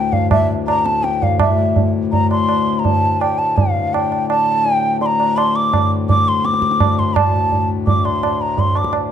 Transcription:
0.00 1.39 D2 medium
0.00 1.39 A2 medium
0.00 0.14 G5 loud
0.13 0.31 F5 medium
0.13 tabla tin medium
0.13 tabla ge medium
0.31 0.48 E5 medium
0.31 tabla na medium
0.31 tabla ge medium
0.67 0.87 A#5 medium
0.67 tabla na medium
0.85 1.05 A5 medium
0.85 tabla te medium
1.03 1.24 G5 medium
1.03 tabla te medium
1.22 1.40 F5 medium
1.22 tabla tin medium
1.22 tabla ge medium
1.39 7.16 D2 medium
1.39 7.16 A2 medium
1.39 1.91 E5 medium
1.39 tabla na loud
1.39 tabla ge loud
1.76 tabla tin medium
1.76 tabla ge medium
2.12 2.29 A#5 medium
2.12 tabla tin medium
2.12 tabla ge medium
2.31 2.81 C6 medium
2.31 tabla na medium
2.49 tabla na medium
2.79 2.86 A#5 medium
2.85 3.23 A5 medium
2.85 tabla tin medium
2.85 tabla ge medium
3.21 3.40 G5 medium
3.21 tabla na medium
3.38 3.58 A5 medium
3.57 3.95 F5 medium
3.57 tabla tin medium
3.57 tabla ge medium
3.94 4.29 G5 medium
3.94 tabla na medium
4.12 tabla na medium
4.30 4.73 A5 medium
4.30 tabla na medium
4.66 tabla tin medium
4.73 4.97 G5 medium
5.01 5.07 C6 medium
5.01 tabla tin medium
5.06 5.38 A#5 medium
5.20 tabla na medium
5.37 5.57 C6 loud
5.37 tabla na medium
5.56 5.91 D6 medium
5.73 tabla na medium
5.73 tabla ge medium
6.09 6.30 D6 medium
6.09 tabla tin medium
6.09 tabla ge medium
6.28 6.47 C6 loud
6.45 7.00 D6 medium
6.45 tabla te medium
6.54 tabla te medium
6.62 tabla ke medium
6.71 tabla te medium
6.80 tabla na medium
6.80 tabla ge medium
6.99 7.18 C6 medium
6.99 tabla ge soft
7.16 9.12 D2 medium
7.16 9.12 A2 medium
7.16 7.69 A5 medium
7.16 tabla na loud
7.16 tabla ge medium
7.52 tabla tin medium
7.52 tabla ge medium
7.87 8.07 D6 medium
7.87 tabla tin medium
7.87 tabla ge medium
8.05 8.43 C6 medium
8.05 tabla na medium
8.23 tabla na medium
8.41 8.61 A#5 medium
8.58 8.79 C6 medium
8.58 tabla tin medium
8.58 tabla ge medium
8.75 8.93 D6 medium
8.75 tabla na medium
8.84 tabla ke medium
8.93 tabla na medium

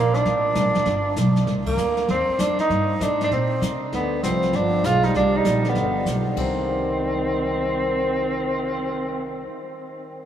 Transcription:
0.00 0.24 A#1 medium
0.00 0.16 A#3 medium
0.14 1.37 D4 medium
0.14 snare soft
0.25 0.55 A1 medium
0.25 brush sweep soft
0.25 kick soft
0.25 snare soft
0.55 0.65 C2 medium
0.55 kick soft
0.55 snare medium
0.55 hi-hat pedal medium
0.65 0.75 A1 medium
0.74 0.85 F1 medium
0.74 snare soft
0.86 1.16 G1 medium
0.86 brush sweep medium
0.86 kick soft
0.86 snare soft
1.16 1.46 B1 medium
1.16 kick soft
1.16 snare medium
1.16 hi-hat pedal medium
1.36 snare soft
1.46 1.77 C2 medium
1.46 brush sweep soft
1.46 kick soft
1.46 snare soft
1.66 2.06 A#3 medium
1.66 kick medium
1.66 ride medium
1.77 2.08 D2 medium
1.77 hi-hat pedal medium
1.97 snare soft
2.08 2.27 D#2 medium
2.08 2.41 C4 medium
2.08 brush sweep soft
2.08 kick soft
2.08 snare soft
2.29 muted upright bass stroke soft
2.39 2.57 F2 medium
2.39 2.59 D4 medium
2.39 kick soft
2.39 snare medium
2.39 hi-hat pedal medium
2.58 3.04 D#4 loud
2.58 muted upright bass stroke soft
2.58 snare soft
2.69 2.99 G2 medium
2.69 brush sweep soft
2.69 kick soft
2.69 snare soft
3.00 3.30 G#2 medium
3.00 3.21 D4 medium
3.00 kick soft
3.00 snare medium
3.00 hi-hat pedal medium
3.21 3.28 D4 medium
3.21 snare soft
3.31 3.61 A#2 medium
3.31 3.60 C4 medium
3.31 brush sweep soft
3.31 kick soft
3.31 snare soft
3.61 3.91 C3 medium
3.61 kick soft
3.61 snare medium
3.61 hi-hat pedal medium
3.92 4.22 D2 medium
3.92 4.22 D3 medium
3.92 4.22 B3 medium
3.92 brush sweep soft
3.92 kick soft
3.92 snare soft
4.23 4.52 C2 medium
4.23 4.56 F3 medium
4.23 4.57 C4 medium
4.23 kick soft
4.23 snare medium
4.23 hi-hat pedal medium
4.43 snare soft
4.53 4.83 G1 medium
4.53 4.88 F3 medium
4.53 4.86 D4 medium
4.53 brush sweep soft
4.53 kick soft
4.53 snare soft
4.84 5.14 B1 medium
4.84 5.06 G#3 medium
4.84 5.06 F4 medium
4.84 kick soft
4.84 snare medium
4.84 hi-hat pedal medium
5.03 5.15 G3 medium
5.03 5.15 D#4 medium
5.03 snare soft
5.14 5.44 C2 medium
5.14 5.35 G3 medium
5.14 5.38 D4 medium
5.14 brush sweep soft
5.14 kick soft
5.14 snare soft
5.35 5.66 G3 medium
5.35 5.70 D#4 medium
5.45 5.74 A#1 medium
5.45 kick soft
5.45 snare medium
5.45 hi-hat pedal medium
5.64 6.06 D3 medium
5.64 snare soft
5.69 6.08 B3 medium
5.75 6.05 G1 medium
5.75 brush sweep soft
5.75 kick soft
5.75 snare soft
6.05 6.35 B1 medium
6.05 kick soft
6.05 snare medium
6.05 hi-hat pedal soft
6.36 9.46 C2 medium
6.36 9.46 D#3 medium
6.36 9.47 C4 medium
6.36 kick soft
6.36 crash medium
6.56 cymbal swell soft

